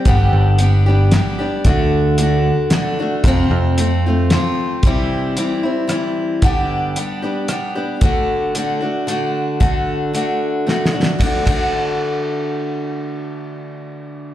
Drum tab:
RD |------------------|------------------|------------------|------------------|
HH |x-----x-----x-----|x-----x-----x-----|x-----x-----x-----|x-----x-----x-----|
SD |------------o-----|------------o-----|------------o-----|------------r-----|
BD |o-----------------|o-----------------|o-----------------|o-----------------|

RD |------------------|------------------|------------------|x--x--------------|
HH |x-----x-----x-----|x-----x-----x-----|x-----x-----------|------------------|
SD |------------r-----|------------------|------------o-o-o-|------------------|
BD |o-----------------|o-----------------|o-----------------|o--o--------------|

RD |------------------|
HH |------------------|
SD |------------------|
BD |------------------|